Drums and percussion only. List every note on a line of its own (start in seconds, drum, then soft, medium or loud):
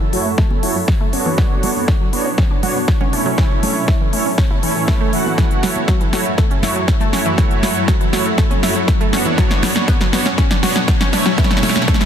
0.13 open hi-hat medium
0.38 kick loud
0.38 snare soft
0.51 high conga medium
0.63 open hi-hat loud
0.88 kick loud
0.88 snare medium
1.13 open hi-hat medium
1.26 high conga medium
1.38 kick loud
1.38 snare medium
1.63 open hi-hat loud
1.63 low conga medium
1.77 high conga medium
1.88 kick loud
1.88 snare medium
2.13 open hi-hat loud
2.38 kick loud
2.38 snare medium
2.63 open hi-hat loud
2.63 low conga loud
2.88 kick loud
2.88 snare medium
3.01 low conga medium
3.13 open hi-hat medium
3.38 kick loud
3.38 snare medium
3.63 open hi-hat loud
3.63 low conga medium
3.88 kick loud
3.88 snare medium
4.13 open hi-hat medium
4.38 kick loud
4.38 snare medium
4.50 high conga soft
4.63 open hi-hat loud
4.88 kick loud
4.88 snare medium
5.13 open hi-hat medium
5.26 high conga medium
5.38 kick loud
5.38 snare medium
5.38 closed hi-hat medium
5.51 closed hi-hat soft
5.63 snare medium
5.63 open hi-hat loud
5.63 low conga medium
5.76 closed hi-hat soft
5.76 high conga medium
5.88 kick loud
5.88 snare medium
5.88 closed hi-hat medium
6.01 closed hi-hat soft
6.13 snare medium
6.13 open hi-hat medium
6.26 closed hi-hat soft
6.38 kick loud
6.38 snare medium
6.38 closed hi-hat medium
6.51 closed hi-hat soft
6.63 snare medium
6.63 open hi-hat loud
6.63 low conga medium
6.76 closed hi-hat soft
6.88 kick loud
6.88 snare medium
6.88 closed hi-hat medium
7.00 closed hi-hat soft
7.00 low conga medium
7.13 snare medium
7.13 open hi-hat medium
7.26 closed hi-hat soft
7.38 kick loud
7.38 snare medium
7.38 closed hi-hat medium
7.51 closed hi-hat soft
7.63 snare medium
7.63 open hi-hat loud
7.63 low conga medium
7.76 closed hi-hat soft
7.88 kick loud
7.88 snare medium
7.88 closed hi-hat medium
8.01 closed hi-hat soft
8.13 snare medium
8.13 open hi-hat medium
8.26 closed hi-hat soft
8.38 kick loud
8.38 snare medium
8.38 closed hi-hat medium
8.51 closed hi-hat soft
8.51 high conga medium
8.63 snare medium
8.63 open hi-hat loud
8.76 closed hi-hat soft
8.88 kick loud
8.88 snare medium
8.88 closed hi-hat medium
9.01 closed hi-hat soft
9.13 snare medium
9.13 open hi-hat medium
9.25 closed hi-hat soft
9.25 high conga medium
9.38 kick loud
9.38 snare medium
9.38 closed hi-hat medium
9.51 snare medium
9.51 closed hi-hat soft
9.63 snare loud
9.63 open hi-hat loud
9.63 low conga medium
9.75 snare medium
9.75 closed hi-hat soft
9.75 high conga medium
9.88 kick loud
9.88 snare loud
9.88 closed hi-hat medium
10.01 snare medium
10.01 closed hi-hat soft
10.13 snare medium
10.13 open hi-hat medium
10.26 snare medium
10.26 closed hi-hat soft
10.38 kick loud
10.38 snare medium
10.38 closed hi-hat medium
10.51 snare medium
10.51 closed hi-hat soft
10.63 snare medium
10.63 open hi-hat medium
10.63 low conga medium
10.76 snare medium
10.88 kick loud
10.88 snare loud
10.88 closed hi-hat medium
11.01 snare medium
11.01 closed hi-hat soft
11.01 low conga medium
11.13 snare loud
11.13 open hi-hat medium
11.26 snare medium
11.38 kick loud
11.38 snare loud
11.38 closed hi-hat medium
11.44 snare medium
11.51 snare medium
11.51 closed hi-hat soft
11.57 snare medium
11.63 snare loud
11.63 open hi-hat loud
11.63 low conga medium
11.69 snare loud
11.76 snare medium
11.76 high conga medium
11.82 snare medium
11.88 kick loud
11.88 snare loud
11.88 closed hi-hat medium
11.94 snare medium
12.01 snare medium
12.01 closed hi-hat soft